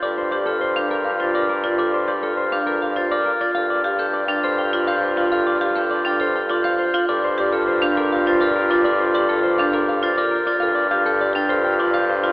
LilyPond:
<<
  \new Staff \with { instrumentName = "Glockenspiel" } { \time 3/4 \key g \minor \tempo 4 = 102 d'''16 r16 c'''16 f'''16 r16 g'''16 d'''16 r16 a'''16 f'''16 r16 a'''16 | d'''16 r16 c'''16 f'''16 r16 g'''16 d'''16 r16 a'''16 f'''16 r16 a'''16 | f'''16 r16 d'''16 g'''16 r16 a'''16 f'''16 r16 c'''16 g'''16 r16 c'''16 | f'''16 r16 d'''16 g'''16 r16 a'''16 f'''16 r16 c'''16 g'''16 r16 c'''16 |
d'''16 r16 c'''16 f'''16 r16 g'''16 d'''16 r16 a'''16 f'''16 r16 a'''16 | d'''16 r16 c'''16 f'''16 r16 g'''16 d'''16 r16 a'''16 f'''16 r16 a'''16 | f'''16 r16 d'''16 g'''16 r16 a'''16 f'''16 r16 c'''16 g'''16 r16 c'''16 | }
  \new Staff \with { instrumentName = "Clean electric guitar" } { \time 3/4 \key g \minor d''16 c''16 d''16 a'16 c''16 f''16 bes'16 f''16 c''16 d''16 bes'16 d''16 | d''16 c''16 d''16 a'16 c''16 f''16 bes'16 f''16 c''16 d''16 bes'16 d''16 | f''16 d''16 f''16 a'16 d''16 g''16 c''16 g''16 d''16 f''16 c''16 f''16 | f''16 d''16 f''16 a'16 d''16 g''16 c''16 g''16 d''16 f''16 c''16 f''16 |
d''16 c''16 d''16 a'16 c''16 f''16 bes'16 f''16 c''16 d''16 bes'16 d''16 | d''16 c''16 d''16 a'16 c''16 f''16 bes'16 f''16 c''16 d''16 bes'16 d''16 | f''16 d''16 f''16 a'16 d''16 g''16 c''16 g''16 d''16 f''16 c''16 f''16 | }
  \new Staff \with { instrumentName = "Marimba" } { \time 3/4 \key g \minor a'16 r16 g'16 a'16 r16 d'16 a'16 r16 f'16 bes'16 r16 f'16 | a'16 r16 g'16 a'16 r16 d'16 a'16 r16 f'16 bes'16 r16 f'16 | a'16 r16 g'16 a'16 r16 d'16 a'16 r16 f'16 c''16 r16 f'16 | a'16 r16 g'16 a'16 r16 d'16 a'16 r16 f'16 c''16 r16 f'16 |
a'16 r16 g'16 a'16 r16 d'16 a'16 r16 f'16 bes'16 r16 f'16 | a'16 r16 g'16 a'16 r16 d'16 a'16 r16 f'16 bes'16 r16 f'16 | a'16 r16 g'16 a'16 r16 d'16 a'16 r16 f'16 c''16 r16 f'16 | }
  \new Staff \with { instrumentName = "Clarinet" } { \time 3/4 \key g \minor f'2.~ | f'2~ f'8. r16 | f'2.~ | f'2~ f'8. r16 |
f'2.~ | f'2~ f'8. r16 | f'2. | }
  \new Staff \with { instrumentName = "Bassoon" } { \clef bass \time 3/4 \key g \minor g,2.~ | g,2. | g,2.~ | g,2. |
g,2.~ | g,2. | g,2. | }
>>